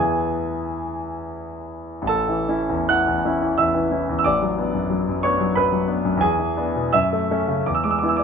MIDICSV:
0, 0, Header, 1, 2, 480
1, 0, Start_track
1, 0, Key_signature, 3, "major"
1, 0, Tempo, 703400
1, 929, Tempo, 727273
1, 1409, Time_signature, 3, 2, 24, 8
1, 1409, Tempo, 789474
1, 1889, Tempo, 705882
1, 2369, Tempo, 652884
1, 4289, Tempo, 731707
1, 5628, End_track
2, 0, Start_track
2, 0, Title_t, "Grand piano"
2, 0, Program_c, 0, 0
2, 0, Note_on_c, 0, 40, 43
2, 0, Note_on_c, 0, 52, 37
2, 0, Note_on_c, 0, 59, 34
2, 0, Note_on_c, 0, 64, 35
2, 0, Note_on_c, 0, 68, 49
2, 0, Note_on_c, 0, 80, 59
2, 102, Control_c, 0, 64, 127
2, 899, Note_off_c, 0, 68, 0
2, 922, Note_off_c, 0, 80, 0
2, 1353, Note_off_c, 0, 40, 0
2, 1363, Note_on_c, 0, 33, 48
2, 1369, Note_off_c, 0, 52, 0
2, 1373, Note_off_c, 0, 59, 0
2, 1374, Note_off_c, 0, 64, 0
2, 1399, Note_on_c, 0, 81, 74
2, 1409, Note_on_c, 0, 69, 53
2, 1419, Control_c, 0, 64, 0
2, 1527, Note_on_c, 0, 52, 37
2, 1529, Control_c, 0, 64, 127
2, 1651, Note_on_c, 0, 61, 35
2, 1652, Note_on_c, 0, 64, 38
2, 1722, Note_off_c, 0, 52, 0
2, 1760, Note_off_c, 0, 61, 0
2, 1760, Note_off_c, 0, 64, 0
2, 1778, Note_on_c, 0, 40, 39
2, 1864, Note_off_c, 0, 69, 0
2, 1884, Note_off_c, 0, 81, 0
2, 1896, Note_on_c, 0, 90, 81
2, 1901, Note_on_c, 0, 52, 34
2, 1903, Note_on_c, 0, 78, 59
2, 1970, Note_off_c, 0, 40, 0
2, 2026, Note_on_c, 0, 40, 38
2, 2096, Note_off_c, 0, 52, 0
2, 2144, Note_on_c, 0, 61, 37
2, 2144, Note_on_c, 0, 64, 38
2, 2212, Note_off_c, 0, 40, 0
2, 2246, Note_off_c, 0, 61, 0
2, 2246, Note_off_c, 0, 64, 0
2, 2254, Note_on_c, 0, 52, 38
2, 2349, Note_off_c, 0, 78, 0
2, 2364, Note_on_c, 0, 88, 60
2, 2369, Note_on_c, 0, 76, 47
2, 2371, Note_on_c, 0, 40, 34
2, 2373, Note_off_c, 0, 90, 0
2, 2442, Note_off_c, 0, 52, 0
2, 2485, Note_on_c, 0, 52, 40
2, 2566, Note_off_c, 0, 40, 0
2, 2610, Note_on_c, 0, 61, 32
2, 2613, Note_on_c, 0, 64, 37
2, 2684, Note_off_c, 0, 52, 0
2, 2721, Note_off_c, 0, 61, 0
2, 2723, Note_off_c, 0, 64, 0
2, 2742, Note_on_c, 0, 40, 40
2, 2779, Note_off_c, 0, 76, 0
2, 2801, Note_off_c, 0, 88, 0
2, 2802, Note_off_c, 0, 33, 0
2, 2812, Note_on_c, 0, 88, 54
2, 2854, Note_on_c, 0, 86, 70
2, 2857, Note_on_c, 0, 33, 46
2, 2859, Note_off_c, 0, 88, 0
2, 2860, Note_off_c, 0, 40, 0
2, 2861, Note_on_c, 0, 74, 56
2, 2870, Control_c, 0, 64, 0
2, 2986, Note_on_c, 0, 54, 37
2, 2995, Control_c, 0, 64, 127
2, 3105, Note_on_c, 0, 59, 37
2, 3110, Note_on_c, 0, 62, 40
2, 3176, Note_off_c, 0, 54, 0
2, 3211, Note_off_c, 0, 59, 0
2, 3214, Note_off_c, 0, 62, 0
2, 3222, Note_on_c, 0, 42, 37
2, 3336, Note_on_c, 0, 54, 39
2, 3413, Note_off_c, 0, 42, 0
2, 3476, Note_on_c, 0, 42, 41
2, 3530, Note_off_c, 0, 54, 0
2, 3552, Note_off_c, 0, 74, 0
2, 3578, Note_off_c, 0, 86, 0
2, 3580, Note_on_c, 0, 85, 78
2, 3587, Note_on_c, 0, 73, 54
2, 3589, Note_on_c, 0, 62, 44
2, 3590, Note_on_c, 0, 59, 39
2, 3658, Note_off_c, 0, 42, 0
2, 3691, Note_off_c, 0, 59, 0
2, 3691, Note_off_c, 0, 62, 0
2, 3709, Note_on_c, 0, 54, 38
2, 3802, Note_off_c, 0, 73, 0
2, 3815, Note_off_c, 0, 85, 0
2, 3818, Note_on_c, 0, 83, 71
2, 3825, Note_on_c, 0, 42, 37
2, 3829, Note_on_c, 0, 71, 51
2, 3891, Note_off_c, 0, 54, 0
2, 3943, Note_on_c, 0, 54, 37
2, 4007, Note_off_c, 0, 42, 0
2, 4055, Note_on_c, 0, 59, 34
2, 4058, Note_on_c, 0, 62, 42
2, 4126, Note_off_c, 0, 54, 0
2, 4159, Note_off_c, 0, 59, 0
2, 4161, Note_off_c, 0, 62, 0
2, 4180, Note_on_c, 0, 42, 40
2, 4259, Note_off_c, 0, 33, 0
2, 4266, Note_off_c, 0, 71, 0
2, 4271, Note_on_c, 0, 40, 53
2, 4290, Note_off_c, 0, 83, 0
2, 4294, Note_off_c, 0, 42, 0
2, 4297, Note_on_c, 0, 80, 68
2, 4300, Control_c, 0, 64, 0
2, 4305, Note_on_c, 0, 68, 54
2, 4418, Control_c, 0, 64, 127
2, 4418, Note_on_c, 0, 52, 38
2, 4536, Note_on_c, 0, 59, 38
2, 4538, Note_on_c, 0, 62, 39
2, 4604, Note_off_c, 0, 52, 0
2, 4640, Note_off_c, 0, 59, 0
2, 4642, Note_off_c, 0, 62, 0
2, 4658, Note_on_c, 0, 47, 41
2, 4744, Note_off_c, 0, 40, 0
2, 4748, Note_off_c, 0, 68, 0
2, 4768, Note_on_c, 0, 88, 72
2, 4770, Note_off_c, 0, 80, 0
2, 4773, Note_off_c, 0, 47, 0
2, 4773, Note_on_c, 0, 76, 62
2, 4776, Note_on_c, 0, 42, 51
2, 4777, Control_c, 0, 64, 0
2, 4895, Control_c, 0, 64, 127
2, 4900, Note_on_c, 0, 57, 39
2, 5011, Note_off_c, 0, 57, 0
2, 5021, Note_on_c, 0, 57, 40
2, 5021, Note_on_c, 0, 61, 43
2, 5119, Note_off_c, 0, 57, 0
2, 5119, Note_off_c, 0, 61, 0
2, 5131, Note_on_c, 0, 49, 40
2, 5218, Note_off_c, 0, 76, 0
2, 5232, Note_off_c, 0, 42, 0
2, 5242, Note_off_c, 0, 88, 0
2, 5245, Note_off_c, 0, 49, 0
2, 5252, Note_on_c, 0, 86, 47
2, 5254, Control_c, 0, 64, 0
2, 5254, Note_on_c, 0, 40, 42
2, 5302, Note_off_c, 0, 86, 0
2, 5306, Note_on_c, 0, 88, 48
2, 5357, Note_off_c, 0, 88, 0
2, 5366, Note_on_c, 0, 86, 48
2, 5368, Note_on_c, 0, 56, 37
2, 5371, Control_c, 0, 64, 127
2, 5412, Note_on_c, 0, 88, 47
2, 5415, Note_off_c, 0, 86, 0
2, 5464, Note_on_c, 0, 86, 48
2, 5467, Note_off_c, 0, 88, 0
2, 5491, Note_on_c, 0, 59, 32
2, 5495, Note_on_c, 0, 64, 32
2, 5521, Note_off_c, 0, 86, 0
2, 5530, Note_on_c, 0, 88, 42
2, 5561, Note_off_c, 0, 56, 0
2, 5582, Note_on_c, 0, 86, 49
2, 5583, Note_off_c, 0, 88, 0
2, 5591, Note_on_c, 0, 74, 37
2, 5600, Note_off_c, 0, 59, 0
2, 5602, Note_off_c, 0, 64, 0
2, 5628, Note_off_c, 0, 40, 0
2, 5628, Note_off_c, 0, 74, 0
2, 5628, Note_off_c, 0, 86, 0
2, 5628, End_track
0, 0, End_of_file